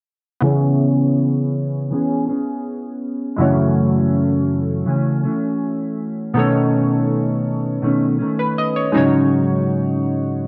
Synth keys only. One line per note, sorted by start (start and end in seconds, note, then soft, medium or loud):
0.40 3.34 B3 medium
0.40 3.35 E4 soft
0.40 3.36 G#4 soft
0.45 3.36 C#5 medium
3.36 3.44 G#3 soft
3.36 6.31 E4 medium
3.36 6.32 F#4 soft
3.42 6.33 A3 medium
3.42 6.33 C#5 medium
6.34 8.89 B3 medium
6.34 8.90 D#4 medium
6.34 8.91 A4 medium
6.39 8.18 C#5 medium
8.39 8.56 B4 medium
8.58 8.75 D#5 medium
8.76 8.96 C#5 medium
8.92 10.47 G#3 medium
8.92 10.47 D#4 medium
8.92 10.47 F#4 medium
8.97 10.47 C#5 medium